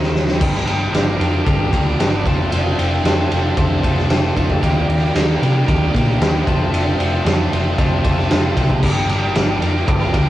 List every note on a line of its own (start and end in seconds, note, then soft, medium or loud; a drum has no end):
0.00 0.42 D#2 medium
0.00 0.40 D#3 medium
0.00 0.37 C4 medium
0.00 0.40 D#4 medium
0.00 0.37 G4 medium
0.00 0.38 C5 loud
0.00 snare medium
0.15 snare medium
0.28 snare medium
0.39 0.62 G1 medium
0.39 0.64 G3 loud
0.39 0.88 D4 loud
0.39 0.64 D4 loud
0.39 0.89 G4 medium
0.39 0.65 G4 medium
0.39 0.90 A#4 medium
0.39 0.66 A#4 loud
0.39 kick loud
0.39 crash loud
0.65 0.87 G1 medium
0.65 0.90 G3 medium
0.65 0.91 D4 medium
0.65 0.92 G4 medium
0.65 0.92 A#4 medium
0.65 ride medium
0.92 1.14 G1 loud
0.92 1.17 G3 medium
0.92 1.41 D4 medium
0.92 1.17 D4 medium
0.92 1.41 G4 medium
0.92 1.18 G4 medium
0.92 1.18 A#4 medium
0.92 1.42 C5 medium
0.92 snare loud
0.92 ride loud
1.18 1.41 F2 loud
1.18 1.43 G3 medium
1.18 1.43 D4 loud
1.18 1.44 G4 loud
1.18 1.44 A#4 loud
1.18 ride medium
1.44 1.67 G1 loud
1.44 1.70 G3 medium
1.44 1.94 D4 medium
1.44 1.71 D4 medium
1.44 1.94 G4 medium
1.44 1.71 G4 loud
1.44 1.94 A4 loud
1.44 1.72 A#4 loud
1.44 kick loud
1.44 ride loud
1.71 1.94 D2 medium
1.71 1.97 G3 loud
1.71 1.98 D4 medium
1.71 1.98 G4 medium
1.71 1.99 A#4 loud
1.71 kick medium
1.71 ride medium
1.97 2.26 G1 loud
1.97 2.23 G3 medium
1.97 2.24 D4 loud
1.97 2.25 G4 medium
1.97 2.24 G4 medium
1.97 2.25 A#4 loud
1.97 2.24 A#4 medium
1.97 snare loud
1.97 ride loud
2.24 2.47 F1 medium
2.24 2.48 F3 medium
2.24 2.49 A3 loud
2.24 2.98 C4 loud
2.24 2.49 C4 loud
2.24 2.98 F4 medium
2.24 2.50 F4 loud
2.24 2.99 A4 loud
2.24 2.51 A4 loud
2.24 kick medium
2.24 ride medium
2.49 2.73 F1 loud
2.49 2.76 F3 medium
2.49 2.77 A3 medium
2.49 2.77 C4 loud
2.49 2.77 F4 loud
2.49 2.78 A4 loud
2.49 ride loud
2.77 2.99 F1 medium
2.77 3.02 F3 medium
2.77 3.03 A3 medium
2.77 3.03 C4 medium
2.77 3.03 F4 medium
2.77 3.04 A4 medium
2.77 ride medium
3.03 3.25 F2 loud
3.03 3.28 F3 loud
3.03 3.30 A3 medium
3.03 3.53 C4 medium
3.03 3.30 C4 medium
3.03 3.31 F4 medium
3.03 3.53 F4 medium
3.03 3.31 A4 medium
3.03 3.54 A4 medium
3.03 snare loud
3.03 ride loud
3.30 3.52 F1 medium
3.30 3.54 F3 medium
3.30 3.56 A3 medium
3.30 3.56 C4 loud
3.30 3.56 F4 loud
3.30 3.57 A4 medium
3.30 ride medium
3.55 3.78 F1 loud
3.55 3.81 F3 loud
3.55 3.82 A3 loud
3.55 4.05 C4 medium
3.55 3.82 C4 loud
3.55 4.05 F4 medium
3.55 3.83 F4 medium
3.55 3.83 A4 loud
3.55 4.06 C5 loud
3.55 kick loud
3.55 ride loud
3.82 4.05 F1 medium
3.82 4.07 F3 medium
3.82 4.08 A3 medium
3.82 4.08 C4 medium
3.82 4.08 F4 loud
3.82 4.08 A4 loud
3.82 kick medium
3.82 ride medium
3.98 snare soft
4.08 4.30 F1 medium
4.08 4.33 F3 medium
4.08 4.34 A3 medium
4.08 4.58 C4 loud
4.08 4.34 C4 medium
4.08 4.35 F4 medium
4.08 4.58 F4 medium
4.08 4.35 A4 loud
4.08 4.59 A4 loud
4.08 snare loud
4.08 ride loud
4.34 4.57 F2 medium
4.34 4.60 F3 medium
4.34 4.60 A3 medium
4.34 4.60 C4 medium
4.34 4.61 F4 loud
4.34 4.61 A4 loud
4.34 kick medium
4.34 ride medium
4.50 kick medium
4.61 4.84 D#2 medium
4.61 4.86 D#3 medium
4.61 4.86 G3 loud
4.61 4.86 A#3 loud
4.61 5.11 D#4 medium
4.61 4.87 G4 medium
4.61 5.11 G4 medium
4.61 4.87 A#4 loud
4.61 5.12 A#4 loud
4.61 kick loud
4.61 ride loud
4.87 5.09 D#2 medium
4.87 5.11 D#3 medium
4.87 5.13 G3 medium
4.87 5.12 A#3 medium
4.87 5.13 G4 loud
4.87 5.14 A#4 medium
4.87 ride medium
5.13 5.35 D#2 loud
5.13 5.38 D#3 medium
5.13 5.39 G3 medium
5.13 5.39 A#3 medium
5.13 5.63 D#4 medium
5.13 5.40 G4 medium
5.13 5.64 G4 medium
5.13 5.64 A4 loud
5.13 5.40 A#4 loud
5.13 snare loud
5.13 ride loud
5.39 5.62 C3 loud
5.39 5.64 D#3 medium
5.39 5.66 G3 loud
5.39 5.65 A#3 medium
5.39 5.65 G4 medium
5.39 5.66 A#4 loud
5.39 ride medium
5.66 5.89 D#2 loud
5.66 5.90 D#3 medium
5.66 5.91 G3 loud
5.66 5.90 A#3 loud
5.66 6.16 D#4 loud
5.66 5.92 G4 loud
5.66 6.17 G4 medium
5.66 5.92 A#4 loud
5.66 6.17 A#4 medium
5.66 kick loud
5.66 ride loud
5.91 6.15 A#2 medium
5.91 6.17 D#3 medium
5.91 6.17 G3 medium
5.91 6.17 A#3 loud
5.91 6.18 G4 medium
5.91 6.18 A#4 loud
5.91 kick medium
5.96 ride medium
6.18 6.41 D#2 medium
6.18 6.44 D#3 medium
6.18 6.44 G3 medium
6.18 6.44 A#3 medium
6.18 6.46 D#4 loud
6.18 6.46 G4 medium
6.18 6.44 G4 medium
6.18 6.44 A#4 medium
6.18 6.46 A#4 loud
6.18 ride loud
6.22 snare loud
6.44 6.68 F1 medium
6.44 6.69 F3 medium
6.44 6.69 A3 medium
6.44 6.70 C4 loud
6.44 6.70 F4 loud
6.44 7.19 F4 loud
6.44 7.19 A4 medium
6.44 6.71 A4 loud
6.44 7.19 C5 loud
6.44 kick loud
6.44 ride medium
6.71 6.93 F1 medium
6.71 6.96 F3 medium
6.71 6.96 A3 medium
6.71 6.97 C4 medium
6.71 6.98 F4 loud
6.71 6.98 A4 medium
6.71 ride loud
6.97 7.20 F1 medium
6.97 7.23 F3 medium
6.97 7.23 A3 medium
6.97 7.24 C4 medium
6.97 7.25 F4 medium
6.97 7.25 A4 medium
6.97 ride medium
7.24 7.46 F2 loud
7.24 7.50 F3 medium
7.24 7.51 A3 loud
7.24 7.51 C4 medium
7.24 7.73 F4 medium
7.24 7.51 F4 medium
7.24 7.74 A4 medium
7.24 7.52 A4 loud
7.24 7.74 C5 medium
7.24 snare loud
7.24 ride loud
7.52 7.73 F1 loud
7.52 7.76 F3 medium
7.52 7.77 A3 medium
7.52 7.77 C4 medium
7.52 7.77 F4 medium
7.52 7.78 A4 loud
7.52 ride medium
7.76 7.99 F1 loud
7.76 8.02 F3 loud
7.76 8.02 A3 medium
7.76 8.03 C4 loud
7.76 8.25 F4 loud
7.76 8.04 F4 loud
7.76 8.26 A4 medium
7.76 8.04 A4 loud
7.76 8.26 C5 loud
7.76 kick loud
7.76 ride loud
8.03 8.25 F1 medium
8.03 8.28 F3 medium
8.03 8.29 A3 loud
8.03 8.29 C4 medium
8.03 8.30 F4 loud
8.03 8.30 A4 loud
8.03 kick loud
8.03 ride medium
8.18 snare soft
8.29 8.51 F1 medium
8.29 8.55 F3 medium
8.29 8.56 A3 medium
8.29 8.56 C4 medium
8.29 8.79 F4 medium
8.29 8.56 F4 loud
8.29 8.79 A4 medium
8.29 8.57 A4 medium
8.29 8.79 C5 loud
8.29 snare loud
8.29 ride loud
8.56 8.78 C2 medium
8.56 8.81 F3 loud
8.56 8.81 A3 medium
8.56 8.81 C4 medium
8.56 8.82 F4 loud
8.56 8.82 A4 loud
8.56 kick medium
8.56 ride medium
8.70 kick medium
8.82 9.04 G1 medium
8.82 9.08 G3 loud
8.82 9.08 D4 medium
8.82 9.31 G4 medium
8.82 9.08 G4 medium
8.82 9.09 A#4 medium
8.82 9.32 A#4 medium
8.82 9.32 D5 loud
8.82 kick loud
8.82 crash loud
9.08 9.29 G1 medium
9.08 9.33 G3 medium
9.08 9.34 D4 medium
9.08 9.34 G4 medium
9.08 9.35 A#4 medium
9.08 ride medium
9.33 9.56 G1 loud
9.33 9.59 G3 medium
9.33 9.60 D4 medium
9.33 9.82 G4 medium
9.33 9.60 G4 medium
9.33 9.83 A#4 medium
9.33 9.60 A#4 medium
9.33 9.84 D5 loud
9.33 snare loud
9.33 ride loud
9.60 9.82 F2 medium
9.60 9.85 G3 medium
9.60 9.86 D4 medium
9.60 9.86 G4 medium
9.60 9.87 A#4 loud
9.60 ride medium
9.85 10.08 G1 loud
9.85 10.11 G3 medium
9.85 10.12 D4 loud
9.85 10.29 G4 medium
9.85 10.13 G4 loud
9.85 10.29 A#4 medium
9.85 10.13 A#4 loud
9.85 10.29 D5 loud
9.85 kick loud
9.85 ride loud
10.12 10.29 D2 medium
10.12 10.29 G3 medium
10.12 10.29 D4 medium
10.12 10.29 G4 medium
10.12 10.29 A#4 loud
10.12 kick medium
10.12 ride medium